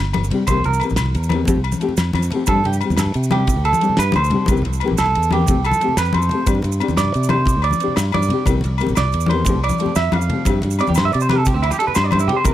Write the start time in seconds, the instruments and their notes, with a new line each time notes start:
0.00 fingered electric bass G1
0.13 fingered electric bass G1, ride, muted conga, high conga, low agogo
0.23 low conga, maracas
0.30 nylon-string guitar G3 C4 D4 G4, ride, low conga
0.47 fingered electric bass C2, nylon-string guitar E3 A#3 C4 G4, clean electric guitar C5, kick, ride, muted conga, low conga, low agogo, maracas
0.57 high conga
0.64 fingered electric bass C2, clean electric guitar A#4, ride, low conga, maracas
0.73 maracas
0.80 nylon-string guitar E3 A#3 C4, ride, low agogo, maracas
0.84 nylon-string guitar G4
0.89 fingered electric bass A#1, muted conga, high conga, maracas
0.96 fingered electric bass C2, snare, ride, low conga, low agogo, maracas
1.06 low conga
1.15 fingered electric bass E2, ride, maracas
1.23 maracas
1.29 nylon-string guitar E3 A#3 C4, ride, muted conga, high conga, low agogo
1.35 nylon-string guitar G4
1.39 low conga
1.45 fingered electric bass F2, nylon-string guitar F3 A3 C4 G4, kick, ride, low conga, maracas
1.57 fingered electric bass C2
1.64 ride, low agogo
1.72 muted conga, high conga, low conga, maracas
1.80 nylon-string guitar F3 A3 C4 G4, ride, maracas
1.89 low conga
1.97 fingered electric bass F2, snare, ride, low conga, low agogo, maracas
2.13 fingered electric bass F2, ride, muted conga, high conga, low agogo
2.22 low conga, maracas
2.31 nylon-string guitar F3 A3 C4, ride, low conga
2.35 nylon-string guitar G4
2.46 fingered electric bass G2, nylon-string guitar G3 C4 D4 G4, clean electric guitar A4, kick, ride, muted conga, low conga, low agogo, maracas
2.56 high conga
2.64 fingered electric bass G2, clean electric guitar G4, ride, low conga
2.73 maracas
2.81 nylon-string guitar G3 C4, ride, low agogo, maracas
2.85 nylon-string guitar G4
2.90 fingered electric bass E2, muted conga, high conga, maracas
2.97 fingered electric bass G2, muted clean electric guitar stroke, snare, ride, low conga, low agogo, maracas
3.06 low conga
3.14 fingered electric bass C3, ride, maracas
3.23 maracas
3.31 nylon-string guitar G3 C4 D4, clean electric guitar G4, ride, muted conga, high conga, low agogo
3.35 muted nylon-string guitar stroke
3.40 low conga
3.47 kick, ride, low conga, maracas
3.56 fingered electric bass D2
3.65 clean electric guitar A4, ride, low agogo
3.73 muted conga, high conga, low conga, maracas
3.81 nylon-string guitar G3 C4 D4 G4, ride, maracas
3.89 low conga
3.97 fingered electric bass G2, clean electric guitar B4, snare, ride, low conga, low agogo, maracas
4.12 fingered electric bass D2, clean electric guitar C5, ride, muted conga, high conga, low agogo
4.22 low conga, maracas
4.30 nylon-string guitar G3 C4 D4 G4, ride, low conga
4.46 fingered electric bass C2, nylon-string guitar E3, kick, ride, muted conga, low agogo, maracas
4.50 nylon-string guitar A#3 C4 G4, high conga, low conga
4.57 maracas
4.62 fingered electric bass C2, ride, low conga
4.73 maracas
4.80 nylon-string guitar E3 A#3 C4, ride, low agogo
4.85 nylon-string guitar G4, muted conga, high conga
4.92 fingered electric bass A#1
4.97 fingered electric bass C2, clean electric guitar A4, snare, ride, low conga, low agogo, maracas
5.06 low conga
5.15 fingered electric bass E2, ride, low conga
5.23 low conga, maracas
5.31 nylon-string guitar E3 A#3 C4 G4, clean electric guitar G4, ride, muted conga, high conga, low conga, low agogo
5.39 low conga
5.46 fingered electric bass F2, nylon-string guitar F3 A3 C4 G4, kick, ride, low conga, maracas
5.55 fingered electric bass C2, low conga
5.64 clean electric guitar A4, ride, low agogo, maracas
5.71 muted conga, high conga, maracas
5.80 nylon-string guitar F3 A3 C4 G4, ride, maracas
5.88 low conga
5.97 fingered electric bass F2, clean electric guitar B4, snare, ride, low conga, low agogo, maracas
6.05 low conga, maracas
6.13 fingered electric bass F2, clean electric guitar C5, ride, muted conga, high conga, low agogo
6.21 low conga, maracas
6.29 nylon-string guitar F3 A3 C4, ride, low conga
6.34 nylon-string guitar G4
6.46 fingered electric bass G2, nylon-string guitar C4 D4 G4, kick, ride, muted conga, low conga, low agogo, maracas
6.55 high conga
6.62 fingered electric bass G2, ride, low conga, maracas
6.72 maracas
6.80 nylon-string guitar C4 D4 G4, ride, low agogo, maracas
6.88 fingered electric bass E2, muted conga, high conga, maracas
6.96 fingered electric bass G2, clean electric guitar D5, snare, ride, low conga, low agogo, maracas
7.04 low conga
7.14 fingered electric bass C3, ride, maracas
7.23 maracas
7.29 nylon-string guitar D4, clean electric guitar C5, ride, muted conga, high conga, low agogo
7.33 nylon-string guitar G4
7.38 low conga
7.46 kick, ride, low conga, maracas
7.57 fingered electric bass D2
7.62 clean electric guitar D5, ride, low agogo
7.71 muted conga, high conga, low conga, maracas
7.80 nylon-string guitar C4 D4 G4, ride, maracas
7.88 low conga
7.96 fingered electric bass G2, muted clean electric guitar stroke, snare, ride, low agogo, maracas
8.12 fingered electric bass G2, clean electric guitar D5, ride, muted conga, high conga, low agogo
8.22 low conga, maracas
8.29 nylon-string guitar C4 D4, ride, low conga
8.33 nylon-string guitar G4
8.46 fingered electric bass C2, nylon-string guitar E3 A#3 C4 G4, kick, ride, muted conga, low conga, low agogo, maracas
8.53 high conga
8.61 ride, low conga, maracas
8.65 fingered electric bass C2
8.78 nylon-string guitar A#3 C4, muted nylon-string guitar stroke, ride, low agogo, maracas
8.82 nylon-string guitar G4
8.87 fingered electric bass A#1, muted conga, high conga, maracas
8.95 fingered electric bass C2, clean electric guitar D5, snare, ride, low conga, low agogo, maracas
9.02 low conga
9.12 fingered electric bass E2, ride, maracas
9.20 maracas
9.26 nylon-string guitar E3 A#3, clean electric guitar C5, muted conga, high conga, low agogo
9.31 nylon-string guitar C4 G4, ride
9.36 low conga
9.45 fingered electric bass F2, nylon-string guitar F3 A3, kick, ride, low conga, maracas
9.49 nylon-string guitar C4 G4
9.55 fingered electric bass C2
9.64 clean electric guitar D5, ride, low agogo
9.69 muted conga, high conga, low conga, maracas
9.78 nylon-string guitar F3 A3 C4 G4, ride, maracas
9.86 low conga
9.95 fingered electric bass F2, clean electric guitar E5, snare, ride, low conga, low agogo, maracas
10.12 fingered electric bass F2, clean electric guitar F5, ride, muted conga, high conga, low agogo
10.21 low conga, maracas
10.29 nylon-string guitar F3 A3 C4 G4, ride, low conga
10.45 fingered electric bass G2, nylon-string guitar C4 D4 G4, kick, ride, muted conga, low conga, low agogo, maracas
10.54 high conga
10.62 fingered electric bass G2, ride, low conga, maracas
10.71 maracas
10.79 nylon-string guitar C4 D4 G4, clean electric guitar D5, ride, low agogo, maracas
10.87 fingered electric bass E2, clean electric guitar G4, muted conga, high conga, maracas
10.95 fingered electric bass G2, clean electric guitar C5, snare, ride, low conga, low agogo, maracas
11.04 clean electric guitar E5, low conga
11.12 fingered electric bass C3, clean electric guitar D5, ride, maracas
11.20 clean electric guitar C5, maracas
11.29 nylon-string guitar C4 D4 G4, clean electric guitar B4, snare, ride, muted conga, high conga, low agogo
11.38 clean electric guitar A4, low conga
11.45 clean electric guitar G4, kick, ride, low conga, maracas
11.54 fingered electric bass D2, clean electric guitar C4
11.62 clean electric guitar E4, ride, low agogo
11.71 clean electric guitar G4, muted conga, low conga, maracas
11.78 nylon-string guitar D4 G4, clean electric guitar A4, muted nylon-string guitar stroke, ride, maracas
11.87 clean electric guitar B4, low conga
11.95 fingered electric bass G2, clean electric guitar C5, snare, ride, low agogo, maracas
12.04 clean electric guitar D5
12.11 fingered electric bass G2, clean electric guitar C5, ride, muted conga, high conga, low agogo
12.19 clean electric guitar E4, low conga, maracas
12.28 nylon-string guitar C4 D4, clean electric guitar G4, ride, low conga
12.33 nylon-string guitar G4, clean electric guitar C5
12.44 fingered electric bass C2, nylon-string guitar E3 A#3 C4 G4, clean electric guitar A#4, kick, ride, muted conga, low agogo, maracas